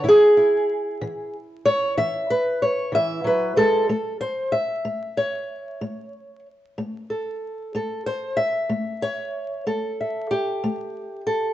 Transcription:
0.04 0.62 E3 medium
0.04 0.36 E4 medium
0.09 1.35 G#4 loud
0.37 3.85 E4 medium
1.01 1.59 E3 medium
1.65 1.97 C#5 loud
1.97 2.55 E3 medium
1.97 2.29 E5 loud
2.30 2.62 B4 loud
2.62 2.94 C#5 medium
2.92 3.24 E3 medium
2.92 3.26 E5 loud
3.24 3.56 F#3 medium
3.24 3.57 B4 medium
3.56 3.89 G#3 medium
3.56 3.88 A4 loud
3.89 4.47 A3 medium
3.89 4.20 A4 soft
4.21 4.53 C5 medium
4.52 5.81 E5 medium
4.85 5.42 A3 medium
5.17 6.45 C#5 medium
5.81 6.39 A3 medium
6.78 7.35 A3 medium
7.10 7.75 A4 soft
7.75 8.32 A3 medium
7.75 8.06 A4 medium
8.06 8.38 C5 medium
8.37 9.65 E5 medium
8.69 9.27 A3 medium
9.02 9.66 C#5 medium
9.67 10.24 A3 medium
9.67 11.26 A4 medium
10.01 11.54 E5 soft
10.31 11.54 G4 medium
10.64 11.21 A3 medium
11.27 11.54 A4 medium

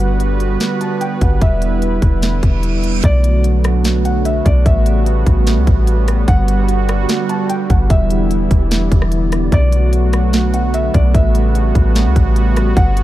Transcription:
0.00 0.57 G1 loud
0.00 1.40 D3 medium
0.00 3.00 G3 medium
0.00 3.01 B3 medium
0.00 1.40 F#4 medium
0.00 1.38 B4 medium
0.00 3.01 B4 medium
0.00 0.18 F#5 loud
0.20 closed hi-hat medium
0.40 closed hi-hat medium
0.60 snare loud
0.60 closed hi-hat medium
0.81 1.00 A5 medium
0.81 closed hi-hat medium
1.01 1.20 G5 medium
1.01 closed hi-hat medium
1.21 1.41 G1 loud
1.21 1.41 F#5 medium
1.21 kick loud
1.21 closed hi-hat medium
1.41 2.00 E1 loud
1.41 3.02 D3 medium
1.41 3.02 E4 medium
1.41 3.02 D5 loud
1.41 1.80 E5 loud
1.41 kick loud
1.41 closed hi-hat medium
1.62 closed hi-hat medium
1.82 closed hi-hat medium
2.02 2.41 E1 loud
2.02 kick medium
2.02 closed hi-hat medium
2.22 snare loud
2.22 closed hi-hat medium
2.22 reverse cymbal medium
2.43 3.01 E1 loud
2.43 kick medium
2.43 closed hi-hat medium
2.63 closed hi-hat medium
2.84 closed hi-hat medium
3.04 4.42 B1 loud
3.04 4.64 D3 medium
3.04 4.64 F#3 medium
3.04 6.25 A3 medium
3.04 4.64 A3 medium
3.04 7.86 B3 medium
3.04 4.64 D4 medium
3.04 6.25 F#4 medium
3.04 4.64 B4 medium
3.04 3.42 D5 loud
3.04 kick loud
3.04 closed hi-hat medium
3.24 closed hi-hat medium
3.44 closed hi-hat medium
3.64 cross-stick loud
3.64 closed hi-hat medium
3.84 snare loud
3.84 closed hi-hat medium
4.05 4.24 F#5 medium
4.05 closed hi-hat medium
4.25 4.45 E5 medium
4.25 closed hi-hat medium
4.45 4.65 B1 loud
4.45 4.65 D5 medium
4.45 kick loud
4.45 closed hi-hat medium
4.66 5.24 A1 loud
4.66 6.27 C#3 medium
4.66 6.26 G3 medium
4.66 9.48 G3 medium
4.66 6.26 C#4 medium
4.66 7.87 F#4 medium
4.66 7.87 B4 medium
4.66 5.04 E5 loud
4.66 kick loud
4.66 closed hi-hat medium
4.86 closed hi-hat medium
5.06 closed hi-hat medium
5.26 5.58 A1 loud
5.26 kick loud
5.26 closed hi-hat medium
5.47 snare loud
5.47 closed hi-hat medium
5.57 5.67 C#2 loud
5.67 6.26 A1 loud
5.67 kick loud
5.67 closed hi-hat medium
5.87 closed hi-hat medium
6.08 cross-stick medium
6.08 closed hi-hat medium
6.28 7.06 G1 loud
6.28 11.11 D3 medium
6.28 9.49 G3 medium
6.28 7.89 F#4 medium
6.28 6.66 F#5 loud
6.28 kick loud
6.28 closed hi-hat medium
6.48 closed hi-hat medium
6.68 closed hi-hat medium
6.89 cross-stick loud
6.89 closed hi-hat medium
7.09 snare loud
7.09 closed hi-hat medium
7.29 7.49 A5 medium
7.29 closed hi-hat medium
7.49 7.69 G5 medium
7.49 closed hi-hat medium
7.70 7.89 G1 loud
7.70 7.89 F#5 medium
7.70 kick loud
7.70 closed hi-hat medium
7.90 8.49 E1 loud
7.90 9.51 E3 medium
7.90 13.03 B3 medium
7.90 9.51 E4 medium
7.90 9.51 D5 loud
7.90 8.28 E5 loud
7.90 kick loud
7.90 closed hi-hat medium
8.10 closed hi-hat medium
8.31 closed hi-hat medium
8.51 8.90 E1 loud
8.51 kick loud
8.51 closed hi-hat medium
8.71 snare loud
8.71 closed hi-hat medium
8.92 9.50 E1 loud
8.92 kick loud
8.92 closed hi-hat medium
9.02 cross-stick medium
9.12 closed hi-hat medium
9.32 cross-stick medium
9.32 closed hi-hat medium
9.52 10.90 B1 loud
9.52 11.13 F#3 medium
9.52 11.13 A3 medium
9.52 12.73 A3 medium
9.52 11.13 D4 medium
9.52 11.13 F#4 medium
9.52 13.03 B4 medium
9.52 9.91 D5 loud
9.52 kick loud
9.52 closed hi-hat medium
9.72 closed hi-hat medium
9.93 closed hi-hat medium
10.13 cross-stick loud
10.13 closed hi-hat medium
10.33 snare loud
10.33 closed hi-hat medium
10.54 10.73 F#5 medium
10.54 closed hi-hat medium
10.74 10.93 E5 medium
10.74 closed hi-hat medium
10.94 11.14 B1 loud
10.94 11.13 D5 medium
10.94 kick loud
10.94 closed hi-hat medium
11.14 11.73 A1 loud
11.14 12.75 C#3 medium
11.14 13.03 G3 medium
11.14 12.75 C#4 medium
11.14 13.03 F#4 medium
11.14 11.53 E5 loud
11.14 kick loud
11.14 closed hi-hat medium
11.35 closed hi-hat medium
11.55 closed hi-hat medium
11.75 12.07 A1 loud
11.75 kick medium
11.75 closed hi-hat medium
11.95 snare loud
11.95 closed hi-hat medium
12.06 12.15 C#2 loud
12.16 12.74 A1 loud
12.16 kick loud
12.16 closed hi-hat medium
12.36 closed hi-hat medium
12.56 cross-stick medium
12.56 closed hi-hat medium
12.77 13.03 G1 loud
12.77 13.03 D3 medium
12.77 13.03 F#5 loud
12.77 kick loud
12.77 closed hi-hat medium
12.97 closed hi-hat medium

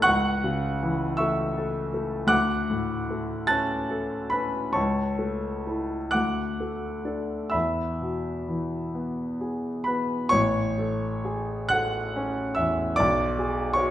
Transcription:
0.02 2.29 C#2 medium
0.02 1.15 F#5 medium
0.02 1.15 C#6 medium
0.02 1.18 F#6 loud
0.44 1.05 C#3 soft
0.83 1.43 E3 medium
1.17 1.80 A3 soft
1.17 2.27 E5 medium
1.17 2.28 C#6 medium
1.17 2.31 E6 medium
1.57 2.17 A4 soft
1.94 2.32 A3 medium
2.27 4.69 D2 medium
2.27 3.45 F#5 medium
2.27 3.45 D6 medium
2.27 3.46 F#6 loud
2.70 3.34 A2 soft
3.10 3.75 A3 soft
3.47 4.16 C#4 medium
3.47 4.28 A5 medium
3.47 4.28 F#6 medium
3.47 4.32 A6 medium
3.90 4.58 A4 soft
4.30 4.75 C#4 soft
4.30 4.72 B4 medium
4.30 4.74 B5 medium
4.73 6.12 C#2 medium
4.73 6.11 C#5 medium
4.73 6.11 A5 medium
4.73 6.15 C#6 medium
5.19 5.96 A3 soft
5.67 6.12 E4 soft
5.67 6.12 A4 soft
6.11 7.50 D2 medium
6.11 7.48 F#5 medium
6.11 7.48 D6 medium
6.11 7.52 F#6 medium
6.60 7.35 A3 soft
7.05 7.49 D4 soft
7.05 7.49 A4 soft
7.50 10.28 E2 soft
7.50 9.81 E5 medium
7.50 9.82 B5 medium
7.50 9.85 E6 medium
8.02 8.76 B2 soft
8.49 9.22 E3 soft
8.95 9.69 B3 soft
9.41 10.15 G#4 soft
9.84 10.33 B3 soft
9.84 10.29 B4 medium
9.84 10.31 B5 medium
10.29 12.93 A1 medium
10.29 11.67 C#5 medium
10.29 11.70 C#6 loud
10.78 11.53 A4 soft
11.25 11.71 G#4 soft
11.69 12.40 A4 medium
11.69 12.52 F#5 medium
11.69 12.55 F#6 loud
12.16 12.82 C#4 medium
12.55 12.98 E2 soft
12.55 12.94 E5 medium
12.55 12.96 E6 medium
12.96 13.91 B1 medium
12.96 13.73 D5 medium
12.96 13.77 D6 loud
13.39 13.91 G#4 soft
13.74 13.91 C#5 medium
13.74 13.91 C#6 medium
13.78 13.91 F#4 soft

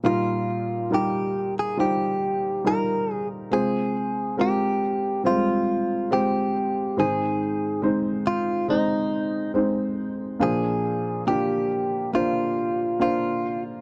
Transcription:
0.04 1.31 A#2 soft
0.04 0.87 G3 medium
0.04 0.87 D#4 soft
0.04 0.87 F4 soft
0.04 0.94 F4 medium
0.04 0.87 A#4 medium
0.91 1.74 G3 medium
0.91 1.74 D#4 soft
0.91 1.74 F4 soft
0.91 1.54 G4 medium
0.91 1.74 A#4 medium
1.59 1.78 G#4 medium
1.77 2.60 G3 medium
1.77 2.61 D#4 soft
1.77 2.61 F4 soft
1.77 2.67 G4 medium
1.77 2.61 C5 medium
2.64 3.47 G3 medium
2.64 3.48 D#4 medium
2.64 3.48 F4 soft
2.64 3.48 A#4 medium
2.64 3.12 A#4 medium
3.12 3.27 G#4 medium
3.51 4.78 C3 soft
3.51 4.34 G#3 medium
3.51 4.34 C4 soft
3.51 4.34 F4 soft
3.51 4.35 G#4 medium
3.51 4.34 C5 medium
4.37 5.20 G#3 medium
4.37 5.20 C4 medium
4.37 5.20 F4 medium
4.37 5.22 G4 medium
4.37 5.20 A#4 medium
5.24 5.31 G3 soft
5.24 6.07 C4 medium
5.24 6.07 F4 soft
5.24 6.13 F4 medium
5.24 6.07 C5 medium
5.30 6.09 G#3 medium
6.11 6.93 G#3 medium
6.11 6.93 C4 medium
6.11 6.93 F4 medium
6.11 6.99 G4 medium
6.11 6.93 C5 medium
6.97 8.22 G#2 soft
6.97 8.22 D#3 medium
6.97 7.79 G#3 medium
6.97 7.79 C4 medium
6.97 7.79 D#4 soft
6.97 7.80 G#4 medium
6.97 7.79 C5 medium
7.82 8.64 G#3 medium
7.82 8.64 C4 medium
7.82 8.65 D#4 medium
7.82 8.65 C5 medium
8.27 8.66 F4 medium
8.68 9.50 G#3 medium
8.68 9.50 C4 medium
8.68 9.51 D#4 medium
8.68 9.51 C5 medium
9.54 10.36 G#3 medium
9.54 10.36 C4 medium
9.54 10.36 D#4 medium
9.54 10.37 C5 medium
10.40 11.66 A#2 soft
10.40 11.66 F3 medium
10.40 11.22 A#3 medium
10.40 11.22 D4 medium
10.40 11.22 F4 medium
10.40 11.24 G#4 medium
10.40 11.23 C5 medium
11.27 12.09 A#3 medium
11.27 12.09 D4 medium
11.27 12.09 F4 medium
11.27 12.10 G4 medium
12.13 12.96 A#3 medium
12.13 12.96 D4 medium
12.13 12.97 F4 medium
12.13 13.01 F4 medium
12.13 12.97 C5 medium
13.00 13.81 A#3 medium
13.00 13.81 D4 soft
13.00 13.81 F4 soft
13.00 13.63 F4 medium
13.00 13.81 C5 medium

